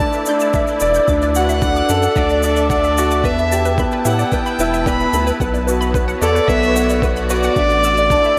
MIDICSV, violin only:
0, 0, Header, 1, 2, 480
1, 0, Start_track
1, 0, Key_signature, 2, "major"
1, 0, Tempo, 540541
1, 962, Time_signature, 4, 2, 24, 8
1, 7449, End_track
2, 0, Start_track
2, 0, Title_t, "Violin"
2, 0, Program_c, 0, 40
2, 0, Note_on_c, 0, 81, 115
2, 209, Note_off_c, 0, 81, 0
2, 1206, Note_on_c, 0, 78, 112
2, 1930, Note_on_c, 0, 74, 97
2, 1943, Note_off_c, 0, 78, 0
2, 2391, Note_off_c, 0, 74, 0
2, 2396, Note_on_c, 0, 74, 97
2, 2879, Note_on_c, 0, 76, 92
2, 2892, Note_off_c, 0, 74, 0
2, 3360, Note_off_c, 0, 76, 0
2, 3604, Note_on_c, 0, 78, 88
2, 3835, Note_on_c, 0, 79, 94
2, 3848, Note_off_c, 0, 78, 0
2, 4331, Note_on_c, 0, 83, 107
2, 4345, Note_off_c, 0, 79, 0
2, 4687, Note_off_c, 0, 83, 0
2, 5523, Note_on_c, 0, 74, 103
2, 5751, Note_on_c, 0, 76, 124
2, 5765, Note_off_c, 0, 74, 0
2, 6237, Note_off_c, 0, 76, 0
2, 6482, Note_on_c, 0, 74, 125
2, 7449, Note_off_c, 0, 74, 0
2, 7449, End_track
0, 0, End_of_file